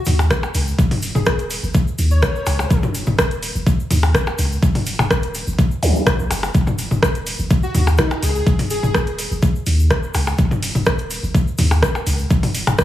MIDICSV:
0, 0, Header, 1, 6, 480
1, 0, Start_track
1, 0, Key_signature, -6, "minor"
1, 0, Tempo, 480000
1, 786, Time_signature, 4, 2, 24, 8
1, 12841, End_track
2, 0, Start_track
2, 0, Title_t, "Digital synth lead"
2, 0, Program_c, 0, 84
2, 66, Note_on_c, 0, 66, 78
2, 147, Note_off_c, 0, 66, 0
2, 1152, Note_on_c, 0, 68, 93
2, 1224, Note_off_c, 0, 68, 0
2, 1265, Note_on_c, 0, 68, 76
2, 1346, Note_off_c, 0, 68, 0
2, 2112, Note_on_c, 0, 73, 99
2, 2781, Note_off_c, 0, 73, 0
2, 7632, Note_on_c, 0, 66, 87
2, 7705, Note_off_c, 0, 66, 0
2, 7746, Note_on_c, 0, 66, 79
2, 7827, Note_off_c, 0, 66, 0
2, 7985, Note_on_c, 0, 63, 96
2, 8203, Note_off_c, 0, 63, 0
2, 8226, Note_on_c, 0, 68, 92
2, 8307, Note_off_c, 0, 68, 0
2, 8352, Note_on_c, 0, 68, 81
2, 8425, Note_off_c, 0, 68, 0
2, 8706, Note_on_c, 0, 68, 101
2, 9072, Note_off_c, 0, 68, 0
2, 12841, End_track
3, 0, Start_track
3, 0, Title_t, "Sub bass"
3, 0, Program_c, 1, 38
3, 66, Note_on_c, 1, 39, 81
3, 306, Note_on_c, 1, 27, 88
3, 321, Note_off_c, 1, 39, 0
3, 493, Note_off_c, 1, 27, 0
3, 546, Note_on_c, 1, 37, 101
3, 733, Note_off_c, 1, 37, 0
3, 786, Note_on_c, 1, 27, 101
3, 1105, Note_off_c, 1, 27, 0
3, 1152, Note_on_c, 1, 27, 86
3, 1585, Note_off_c, 1, 27, 0
3, 1631, Note_on_c, 1, 30, 99
3, 1719, Note_off_c, 1, 30, 0
3, 1985, Note_on_c, 1, 39, 85
3, 2226, Note_on_c, 1, 27, 90
3, 2240, Note_off_c, 1, 39, 0
3, 2413, Note_off_c, 1, 27, 0
3, 2466, Note_on_c, 1, 37, 100
3, 2653, Note_off_c, 1, 37, 0
3, 2706, Note_on_c, 1, 27, 97
3, 3025, Note_off_c, 1, 27, 0
3, 3072, Note_on_c, 1, 27, 83
3, 3505, Note_off_c, 1, 27, 0
3, 3552, Note_on_c, 1, 30, 100
3, 3639, Note_off_c, 1, 30, 0
3, 3906, Note_on_c, 1, 39, 84
3, 4146, Note_on_c, 1, 27, 86
3, 4161, Note_off_c, 1, 39, 0
3, 4333, Note_off_c, 1, 27, 0
3, 4386, Note_on_c, 1, 37, 101
3, 4573, Note_off_c, 1, 37, 0
3, 4626, Note_on_c, 1, 27, 98
3, 4945, Note_off_c, 1, 27, 0
3, 4992, Note_on_c, 1, 27, 82
3, 5426, Note_off_c, 1, 27, 0
3, 5472, Note_on_c, 1, 30, 102
3, 5560, Note_off_c, 1, 30, 0
3, 5826, Note_on_c, 1, 39, 85
3, 5923, Note_off_c, 1, 39, 0
3, 6192, Note_on_c, 1, 34, 90
3, 6279, Note_off_c, 1, 34, 0
3, 6305, Note_on_c, 1, 30, 94
3, 6493, Note_off_c, 1, 30, 0
3, 6546, Note_on_c, 1, 27, 97
3, 6865, Note_off_c, 1, 27, 0
3, 6912, Note_on_c, 1, 27, 82
3, 7345, Note_off_c, 1, 27, 0
3, 7391, Note_on_c, 1, 30, 101
3, 7479, Note_off_c, 1, 30, 0
3, 7746, Note_on_c, 1, 39, 86
3, 7986, Note_on_c, 1, 27, 89
3, 8001, Note_off_c, 1, 39, 0
3, 8173, Note_off_c, 1, 27, 0
3, 8226, Note_on_c, 1, 37, 99
3, 8413, Note_off_c, 1, 37, 0
3, 8466, Note_on_c, 1, 27, 101
3, 8785, Note_off_c, 1, 27, 0
3, 8832, Note_on_c, 1, 27, 88
3, 9265, Note_off_c, 1, 27, 0
3, 9312, Note_on_c, 1, 30, 105
3, 9400, Note_off_c, 1, 30, 0
3, 9666, Note_on_c, 1, 39, 88
3, 9906, Note_on_c, 1, 27, 89
3, 9921, Note_off_c, 1, 39, 0
3, 10093, Note_off_c, 1, 27, 0
3, 10145, Note_on_c, 1, 37, 101
3, 10333, Note_off_c, 1, 37, 0
3, 10386, Note_on_c, 1, 27, 99
3, 10705, Note_off_c, 1, 27, 0
3, 10752, Note_on_c, 1, 27, 84
3, 11185, Note_off_c, 1, 27, 0
3, 11231, Note_on_c, 1, 30, 101
3, 11319, Note_off_c, 1, 30, 0
3, 11585, Note_on_c, 1, 39, 84
3, 11825, Note_on_c, 1, 27, 90
3, 11840, Note_off_c, 1, 39, 0
3, 12013, Note_off_c, 1, 27, 0
3, 12066, Note_on_c, 1, 37, 99
3, 12253, Note_off_c, 1, 37, 0
3, 12305, Note_on_c, 1, 27, 100
3, 12625, Note_off_c, 1, 27, 0
3, 12672, Note_on_c, 1, 27, 88
3, 12841, Note_off_c, 1, 27, 0
3, 12841, End_track
4, 0, Start_track
4, 0, Title_t, "Zap"
4, 0, Program_c, 2, 103
4, 5826, Note_on_c, 2, 60, 62
4, 5952, Note_off_c, 2, 60, 0
4, 12841, End_track
5, 0, Start_track
5, 0, Title_t, "Percussion blips"
5, 192, Note_on_c, 9, 77, 56
5, 292, Note_off_c, 9, 77, 0
5, 432, Note_on_c, 9, 77, 81
5, 532, Note_off_c, 9, 77, 0
5, 2466, Note_on_c, 9, 77, 61
5, 2566, Note_off_c, 9, 77, 0
5, 2592, Note_on_c, 9, 77, 60
5, 2692, Note_off_c, 9, 77, 0
5, 4031, Note_on_c, 9, 77, 59
5, 4131, Note_off_c, 9, 77, 0
5, 4271, Note_on_c, 9, 77, 82
5, 4371, Note_off_c, 9, 77, 0
5, 4992, Note_on_c, 9, 77, 72
5, 5092, Note_off_c, 9, 77, 0
5, 6305, Note_on_c, 9, 77, 61
5, 6405, Note_off_c, 9, 77, 0
5, 6431, Note_on_c, 9, 77, 59
5, 6531, Note_off_c, 9, 77, 0
5, 7872, Note_on_c, 9, 77, 54
5, 7972, Note_off_c, 9, 77, 0
5, 8111, Note_on_c, 9, 77, 83
5, 8211, Note_off_c, 9, 77, 0
5, 10146, Note_on_c, 9, 77, 58
5, 10246, Note_off_c, 9, 77, 0
5, 10272, Note_on_c, 9, 77, 54
5, 10372, Note_off_c, 9, 77, 0
5, 11712, Note_on_c, 9, 77, 53
5, 11811, Note_off_c, 9, 77, 0
5, 11952, Note_on_c, 9, 77, 78
5, 12052, Note_off_c, 9, 77, 0
5, 12672, Note_on_c, 9, 77, 70
5, 12772, Note_off_c, 9, 77, 0
5, 12841, End_track
6, 0, Start_track
6, 0, Title_t, "Drums"
6, 52, Note_on_c, 9, 82, 97
6, 65, Note_on_c, 9, 45, 84
6, 66, Note_on_c, 9, 46, 87
6, 152, Note_off_c, 9, 82, 0
6, 165, Note_off_c, 9, 45, 0
6, 166, Note_off_c, 9, 46, 0
6, 194, Note_on_c, 9, 82, 42
6, 294, Note_off_c, 9, 82, 0
6, 306, Note_on_c, 9, 36, 102
6, 306, Note_on_c, 9, 37, 96
6, 307, Note_on_c, 9, 82, 49
6, 406, Note_off_c, 9, 36, 0
6, 406, Note_off_c, 9, 37, 0
6, 407, Note_off_c, 9, 82, 0
6, 430, Note_on_c, 9, 82, 27
6, 530, Note_off_c, 9, 82, 0
6, 545, Note_on_c, 9, 82, 99
6, 546, Note_on_c, 9, 46, 89
6, 645, Note_off_c, 9, 82, 0
6, 646, Note_off_c, 9, 46, 0
6, 673, Note_on_c, 9, 82, 39
6, 773, Note_off_c, 9, 82, 0
6, 786, Note_on_c, 9, 36, 127
6, 789, Note_on_c, 9, 82, 57
6, 886, Note_off_c, 9, 36, 0
6, 889, Note_off_c, 9, 82, 0
6, 912, Note_on_c, 9, 45, 98
6, 912, Note_on_c, 9, 46, 50
6, 915, Note_on_c, 9, 82, 26
6, 1012, Note_off_c, 9, 45, 0
6, 1012, Note_off_c, 9, 46, 0
6, 1015, Note_off_c, 9, 82, 0
6, 1024, Note_on_c, 9, 82, 88
6, 1026, Note_on_c, 9, 46, 84
6, 1124, Note_off_c, 9, 82, 0
6, 1126, Note_off_c, 9, 46, 0
6, 1152, Note_on_c, 9, 45, 84
6, 1156, Note_on_c, 9, 82, 37
6, 1252, Note_off_c, 9, 45, 0
6, 1256, Note_off_c, 9, 82, 0
6, 1260, Note_on_c, 9, 82, 54
6, 1265, Note_on_c, 9, 37, 99
6, 1266, Note_on_c, 9, 36, 110
6, 1360, Note_off_c, 9, 82, 0
6, 1365, Note_off_c, 9, 37, 0
6, 1366, Note_off_c, 9, 36, 0
6, 1387, Note_on_c, 9, 82, 28
6, 1392, Note_on_c, 9, 42, 39
6, 1487, Note_off_c, 9, 82, 0
6, 1492, Note_off_c, 9, 42, 0
6, 1503, Note_on_c, 9, 82, 92
6, 1505, Note_on_c, 9, 46, 89
6, 1603, Note_off_c, 9, 82, 0
6, 1605, Note_off_c, 9, 46, 0
6, 1635, Note_on_c, 9, 82, 44
6, 1735, Note_off_c, 9, 82, 0
6, 1742, Note_on_c, 9, 82, 60
6, 1745, Note_on_c, 9, 36, 127
6, 1842, Note_off_c, 9, 82, 0
6, 1845, Note_off_c, 9, 36, 0
6, 1874, Note_on_c, 9, 82, 30
6, 1974, Note_off_c, 9, 82, 0
6, 1984, Note_on_c, 9, 82, 95
6, 1985, Note_on_c, 9, 46, 85
6, 2084, Note_off_c, 9, 82, 0
6, 2085, Note_off_c, 9, 46, 0
6, 2105, Note_on_c, 9, 82, 40
6, 2205, Note_off_c, 9, 82, 0
6, 2225, Note_on_c, 9, 37, 99
6, 2226, Note_on_c, 9, 36, 108
6, 2226, Note_on_c, 9, 82, 53
6, 2325, Note_off_c, 9, 37, 0
6, 2326, Note_off_c, 9, 36, 0
6, 2326, Note_off_c, 9, 82, 0
6, 2354, Note_on_c, 9, 82, 24
6, 2454, Note_off_c, 9, 82, 0
6, 2464, Note_on_c, 9, 82, 97
6, 2465, Note_on_c, 9, 46, 86
6, 2564, Note_off_c, 9, 82, 0
6, 2565, Note_off_c, 9, 46, 0
6, 2596, Note_on_c, 9, 82, 41
6, 2696, Note_off_c, 9, 82, 0
6, 2705, Note_on_c, 9, 36, 127
6, 2706, Note_on_c, 9, 82, 55
6, 2805, Note_off_c, 9, 36, 0
6, 2806, Note_off_c, 9, 82, 0
6, 2829, Note_on_c, 9, 82, 25
6, 2832, Note_on_c, 9, 45, 96
6, 2929, Note_off_c, 9, 82, 0
6, 2932, Note_off_c, 9, 45, 0
6, 2946, Note_on_c, 9, 46, 84
6, 2947, Note_on_c, 9, 82, 104
6, 3046, Note_off_c, 9, 46, 0
6, 3047, Note_off_c, 9, 82, 0
6, 3062, Note_on_c, 9, 82, 44
6, 3071, Note_on_c, 9, 45, 81
6, 3162, Note_off_c, 9, 82, 0
6, 3171, Note_off_c, 9, 45, 0
6, 3185, Note_on_c, 9, 36, 111
6, 3186, Note_on_c, 9, 37, 101
6, 3188, Note_on_c, 9, 82, 60
6, 3285, Note_off_c, 9, 36, 0
6, 3286, Note_off_c, 9, 37, 0
6, 3288, Note_off_c, 9, 82, 0
6, 3312, Note_on_c, 9, 42, 40
6, 3320, Note_on_c, 9, 82, 29
6, 3412, Note_off_c, 9, 42, 0
6, 3420, Note_off_c, 9, 82, 0
6, 3426, Note_on_c, 9, 46, 84
6, 3428, Note_on_c, 9, 82, 93
6, 3526, Note_off_c, 9, 46, 0
6, 3528, Note_off_c, 9, 82, 0
6, 3553, Note_on_c, 9, 82, 42
6, 3653, Note_off_c, 9, 82, 0
6, 3666, Note_on_c, 9, 36, 126
6, 3668, Note_on_c, 9, 82, 54
6, 3766, Note_off_c, 9, 36, 0
6, 3768, Note_off_c, 9, 82, 0
6, 3797, Note_on_c, 9, 82, 28
6, 3897, Note_off_c, 9, 82, 0
6, 3905, Note_on_c, 9, 45, 79
6, 3906, Note_on_c, 9, 46, 82
6, 3912, Note_on_c, 9, 82, 102
6, 4005, Note_off_c, 9, 45, 0
6, 4006, Note_off_c, 9, 46, 0
6, 4012, Note_off_c, 9, 82, 0
6, 4028, Note_on_c, 9, 82, 39
6, 4128, Note_off_c, 9, 82, 0
6, 4146, Note_on_c, 9, 36, 110
6, 4146, Note_on_c, 9, 37, 100
6, 4149, Note_on_c, 9, 82, 53
6, 4246, Note_off_c, 9, 36, 0
6, 4246, Note_off_c, 9, 37, 0
6, 4249, Note_off_c, 9, 82, 0
6, 4265, Note_on_c, 9, 82, 27
6, 4365, Note_off_c, 9, 82, 0
6, 4384, Note_on_c, 9, 82, 104
6, 4386, Note_on_c, 9, 46, 86
6, 4484, Note_off_c, 9, 82, 0
6, 4486, Note_off_c, 9, 46, 0
6, 4521, Note_on_c, 9, 82, 41
6, 4621, Note_off_c, 9, 82, 0
6, 4626, Note_on_c, 9, 36, 127
6, 4630, Note_on_c, 9, 82, 61
6, 4725, Note_off_c, 9, 36, 0
6, 4730, Note_off_c, 9, 82, 0
6, 4749, Note_on_c, 9, 82, 25
6, 4751, Note_on_c, 9, 45, 95
6, 4752, Note_on_c, 9, 46, 47
6, 4849, Note_off_c, 9, 82, 0
6, 4851, Note_off_c, 9, 45, 0
6, 4852, Note_off_c, 9, 46, 0
6, 4863, Note_on_c, 9, 82, 103
6, 4866, Note_on_c, 9, 46, 80
6, 4963, Note_off_c, 9, 82, 0
6, 4966, Note_off_c, 9, 46, 0
6, 4992, Note_on_c, 9, 45, 79
6, 4994, Note_on_c, 9, 82, 38
6, 5092, Note_off_c, 9, 45, 0
6, 5094, Note_off_c, 9, 82, 0
6, 5106, Note_on_c, 9, 36, 108
6, 5106, Note_on_c, 9, 37, 94
6, 5110, Note_on_c, 9, 82, 60
6, 5206, Note_off_c, 9, 36, 0
6, 5206, Note_off_c, 9, 37, 0
6, 5210, Note_off_c, 9, 82, 0
6, 5227, Note_on_c, 9, 82, 25
6, 5232, Note_on_c, 9, 42, 40
6, 5327, Note_off_c, 9, 82, 0
6, 5332, Note_off_c, 9, 42, 0
6, 5345, Note_on_c, 9, 82, 93
6, 5346, Note_on_c, 9, 46, 86
6, 5445, Note_off_c, 9, 82, 0
6, 5446, Note_off_c, 9, 46, 0
6, 5471, Note_on_c, 9, 82, 45
6, 5571, Note_off_c, 9, 82, 0
6, 5586, Note_on_c, 9, 36, 126
6, 5587, Note_on_c, 9, 82, 53
6, 5686, Note_off_c, 9, 36, 0
6, 5687, Note_off_c, 9, 82, 0
6, 5712, Note_on_c, 9, 82, 26
6, 5812, Note_off_c, 9, 82, 0
6, 5826, Note_on_c, 9, 46, 82
6, 5832, Note_on_c, 9, 82, 88
6, 5926, Note_off_c, 9, 46, 0
6, 5932, Note_off_c, 9, 82, 0
6, 5955, Note_on_c, 9, 82, 36
6, 6055, Note_off_c, 9, 82, 0
6, 6066, Note_on_c, 9, 36, 108
6, 6066, Note_on_c, 9, 37, 94
6, 6066, Note_on_c, 9, 82, 59
6, 6166, Note_off_c, 9, 36, 0
6, 6166, Note_off_c, 9, 37, 0
6, 6166, Note_off_c, 9, 82, 0
6, 6194, Note_on_c, 9, 82, 28
6, 6294, Note_off_c, 9, 82, 0
6, 6306, Note_on_c, 9, 46, 83
6, 6315, Note_on_c, 9, 82, 103
6, 6406, Note_off_c, 9, 46, 0
6, 6415, Note_off_c, 9, 82, 0
6, 6432, Note_on_c, 9, 82, 40
6, 6532, Note_off_c, 9, 82, 0
6, 6545, Note_on_c, 9, 82, 52
6, 6546, Note_on_c, 9, 36, 121
6, 6645, Note_off_c, 9, 82, 0
6, 6646, Note_off_c, 9, 36, 0
6, 6670, Note_on_c, 9, 82, 27
6, 6671, Note_on_c, 9, 45, 91
6, 6770, Note_off_c, 9, 82, 0
6, 6771, Note_off_c, 9, 45, 0
6, 6783, Note_on_c, 9, 82, 86
6, 6786, Note_on_c, 9, 46, 82
6, 6883, Note_off_c, 9, 82, 0
6, 6886, Note_off_c, 9, 46, 0
6, 6911, Note_on_c, 9, 45, 76
6, 6913, Note_on_c, 9, 82, 37
6, 7011, Note_off_c, 9, 45, 0
6, 7013, Note_off_c, 9, 82, 0
6, 7026, Note_on_c, 9, 36, 105
6, 7026, Note_on_c, 9, 37, 91
6, 7035, Note_on_c, 9, 82, 56
6, 7126, Note_off_c, 9, 36, 0
6, 7126, Note_off_c, 9, 37, 0
6, 7135, Note_off_c, 9, 82, 0
6, 7149, Note_on_c, 9, 82, 27
6, 7152, Note_on_c, 9, 42, 37
6, 7249, Note_off_c, 9, 82, 0
6, 7252, Note_off_c, 9, 42, 0
6, 7266, Note_on_c, 9, 46, 88
6, 7266, Note_on_c, 9, 82, 94
6, 7366, Note_off_c, 9, 46, 0
6, 7366, Note_off_c, 9, 82, 0
6, 7389, Note_on_c, 9, 82, 40
6, 7489, Note_off_c, 9, 82, 0
6, 7503, Note_on_c, 9, 82, 51
6, 7506, Note_on_c, 9, 36, 124
6, 7603, Note_off_c, 9, 82, 0
6, 7606, Note_off_c, 9, 36, 0
6, 7629, Note_on_c, 9, 82, 29
6, 7729, Note_off_c, 9, 82, 0
6, 7746, Note_on_c, 9, 45, 79
6, 7746, Note_on_c, 9, 46, 81
6, 7748, Note_on_c, 9, 82, 92
6, 7846, Note_off_c, 9, 45, 0
6, 7846, Note_off_c, 9, 46, 0
6, 7848, Note_off_c, 9, 82, 0
6, 7872, Note_on_c, 9, 82, 40
6, 7971, Note_off_c, 9, 82, 0
6, 7976, Note_on_c, 9, 82, 54
6, 7986, Note_on_c, 9, 36, 108
6, 7986, Note_on_c, 9, 37, 88
6, 8076, Note_off_c, 9, 82, 0
6, 8086, Note_off_c, 9, 36, 0
6, 8086, Note_off_c, 9, 37, 0
6, 8107, Note_on_c, 9, 82, 25
6, 8207, Note_off_c, 9, 82, 0
6, 8226, Note_on_c, 9, 46, 85
6, 8231, Note_on_c, 9, 82, 90
6, 8326, Note_off_c, 9, 46, 0
6, 8331, Note_off_c, 9, 82, 0
6, 8354, Note_on_c, 9, 82, 41
6, 8454, Note_off_c, 9, 82, 0
6, 8466, Note_on_c, 9, 36, 117
6, 8467, Note_on_c, 9, 82, 54
6, 8566, Note_off_c, 9, 36, 0
6, 8567, Note_off_c, 9, 82, 0
6, 8590, Note_on_c, 9, 82, 27
6, 8592, Note_on_c, 9, 45, 88
6, 8592, Note_on_c, 9, 46, 50
6, 8690, Note_off_c, 9, 82, 0
6, 8692, Note_off_c, 9, 45, 0
6, 8692, Note_off_c, 9, 46, 0
6, 8702, Note_on_c, 9, 82, 100
6, 8705, Note_on_c, 9, 46, 84
6, 8802, Note_off_c, 9, 82, 0
6, 8805, Note_off_c, 9, 46, 0
6, 8832, Note_on_c, 9, 45, 76
6, 8837, Note_on_c, 9, 82, 38
6, 8932, Note_off_c, 9, 45, 0
6, 8937, Note_off_c, 9, 82, 0
6, 8945, Note_on_c, 9, 37, 91
6, 8946, Note_on_c, 9, 36, 102
6, 8949, Note_on_c, 9, 82, 51
6, 9045, Note_off_c, 9, 37, 0
6, 9046, Note_off_c, 9, 36, 0
6, 9049, Note_off_c, 9, 82, 0
6, 9070, Note_on_c, 9, 82, 25
6, 9071, Note_on_c, 9, 42, 35
6, 9170, Note_off_c, 9, 82, 0
6, 9171, Note_off_c, 9, 42, 0
6, 9185, Note_on_c, 9, 46, 87
6, 9190, Note_on_c, 9, 82, 99
6, 9285, Note_off_c, 9, 46, 0
6, 9290, Note_off_c, 9, 82, 0
6, 9316, Note_on_c, 9, 82, 36
6, 9416, Note_off_c, 9, 82, 0
6, 9424, Note_on_c, 9, 82, 51
6, 9426, Note_on_c, 9, 36, 117
6, 9524, Note_off_c, 9, 82, 0
6, 9526, Note_off_c, 9, 36, 0
6, 9556, Note_on_c, 9, 82, 25
6, 9656, Note_off_c, 9, 82, 0
6, 9662, Note_on_c, 9, 82, 79
6, 9665, Note_on_c, 9, 46, 84
6, 9762, Note_off_c, 9, 82, 0
6, 9765, Note_off_c, 9, 46, 0
6, 9795, Note_on_c, 9, 82, 43
6, 9895, Note_off_c, 9, 82, 0
6, 9905, Note_on_c, 9, 82, 52
6, 9906, Note_on_c, 9, 36, 101
6, 9906, Note_on_c, 9, 37, 88
6, 10005, Note_off_c, 9, 82, 0
6, 10006, Note_off_c, 9, 36, 0
6, 10006, Note_off_c, 9, 37, 0
6, 10030, Note_on_c, 9, 82, 26
6, 10130, Note_off_c, 9, 82, 0
6, 10140, Note_on_c, 9, 82, 90
6, 10146, Note_on_c, 9, 46, 88
6, 10240, Note_off_c, 9, 82, 0
6, 10246, Note_off_c, 9, 46, 0
6, 10271, Note_on_c, 9, 82, 36
6, 10371, Note_off_c, 9, 82, 0
6, 10380, Note_on_c, 9, 82, 47
6, 10386, Note_on_c, 9, 36, 116
6, 10480, Note_off_c, 9, 82, 0
6, 10486, Note_off_c, 9, 36, 0
6, 10512, Note_on_c, 9, 45, 96
6, 10515, Note_on_c, 9, 82, 26
6, 10612, Note_off_c, 9, 45, 0
6, 10615, Note_off_c, 9, 82, 0
6, 10625, Note_on_c, 9, 46, 91
6, 10631, Note_on_c, 9, 82, 86
6, 10725, Note_off_c, 9, 46, 0
6, 10731, Note_off_c, 9, 82, 0
6, 10752, Note_on_c, 9, 45, 75
6, 10752, Note_on_c, 9, 82, 35
6, 10852, Note_off_c, 9, 45, 0
6, 10852, Note_off_c, 9, 82, 0
6, 10859, Note_on_c, 9, 82, 48
6, 10865, Note_on_c, 9, 36, 101
6, 10865, Note_on_c, 9, 37, 94
6, 10959, Note_off_c, 9, 82, 0
6, 10965, Note_off_c, 9, 36, 0
6, 10965, Note_off_c, 9, 37, 0
6, 10983, Note_on_c, 9, 82, 24
6, 10992, Note_on_c, 9, 42, 36
6, 11083, Note_off_c, 9, 82, 0
6, 11092, Note_off_c, 9, 42, 0
6, 11106, Note_on_c, 9, 46, 92
6, 11106, Note_on_c, 9, 82, 98
6, 11206, Note_off_c, 9, 46, 0
6, 11206, Note_off_c, 9, 82, 0
6, 11238, Note_on_c, 9, 82, 35
6, 11338, Note_off_c, 9, 82, 0
6, 11345, Note_on_c, 9, 36, 119
6, 11350, Note_on_c, 9, 82, 54
6, 11445, Note_off_c, 9, 36, 0
6, 11450, Note_off_c, 9, 82, 0
6, 11474, Note_on_c, 9, 82, 24
6, 11574, Note_off_c, 9, 82, 0
6, 11578, Note_on_c, 9, 82, 80
6, 11585, Note_on_c, 9, 45, 81
6, 11586, Note_on_c, 9, 46, 90
6, 11678, Note_off_c, 9, 82, 0
6, 11685, Note_off_c, 9, 45, 0
6, 11686, Note_off_c, 9, 46, 0
6, 11715, Note_on_c, 9, 82, 39
6, 11815, Note_off_c, 9, 82, 0
6, 11825, Note_on_c, 9, 36, 102
6, 11826, Note_on_c, 9, 37, 94
6, 11831, Note_on_c, 9, 82, 55
6, 11925, Note_off_c, 9, 36, 0
6, 11926, Note_off_c, 9, 37, 0
6, 11931, Note_off_c, 9, 82, 0
6, 11953, Note_on_c, 9, 82, 23
6, 12053, Note_off_c, 9, 82, 0
6, 12066, Note_on_c, 9, 46, 89
6, 12068, Note_on_c, 9, 82, 83
6, 12166, Note_off_c, 9, 46, 0
6, 12168, Note_off_c, 9, 82, 0
6, 12187, Note_on_c, 9, 82, 36
6, 12287, Note_off_c, 9, 82, 0
6, 12303, Note_on_c, 9, 82, 45
6, 12305, Note_on_c, 9, 36, 120
6, 12403, Note_off_c, 9, 82, 0
6, 12405, Note_off_c, 9, 36, 0
6, 12431, Note_on_c, 9, 45, 95
6, 12432, Note_on_c, 9, 46, 53
6, 12433, Note_on_c, 9, 82, 28
6, 12531, Note_off_c, 9, 45, 0
6, 12532, Note_off_c, 9, 46, 0
6, 12533, Note_off_c, 9, 82, 0
6, 12545, Note_on_c, 9, 46, 92
6, 12549, Note_on_c, 9, 82, 95
6, 12645, Note_off_c, 9, 46, 0
6, 12649, Note_off_c, 9, 82, 0
6, 12672, Note_on_c, 9, 42, 37
6, 12672, Note_on_c, 9, 45, 82
6, 12676, Note_on_c, 9, 82, 37
6, 12772, Note_off_c, 9, 42, 0
6, 12772, Note_off_c, 9, 45, 0
6, 12776, Note_off_c, 9, 82, 0
6, 12783, Note_on_c, 9, 82, 52
6, 12785, Note_on_c, 9, 36, 98
6, 12785, Note_on_c, 9, 37, 92
6, 12841, Note_off_c, 9, 36, 0
6, 12841, Note_off_c, 9, 37, 0
6, 12841, Note_off_c, 9, 82, 0
6, 12841, End_track
0, 0, End_of_file